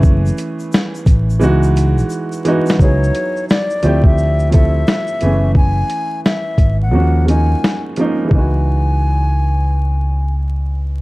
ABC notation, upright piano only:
X:1
M:4/4
L:1/8
Q:"Swing 16ths" 1/4=87
K:F#mix
V:1 name="Upright piano"
[E,=A,B,CG]2 z2 [E,G,B,DF]2 z [E,G,B,DF] | [F,B,DEG]3 [=F,=A,=CE=G]2 [F,A,CE=A] z [E,A,B,^C^G]- | [E,=A,B,CG]2 z2 [^E,G,^A,CF] [E,G,A,CD] z [E,G,A,CD] | [E,G,B,DF]8 |]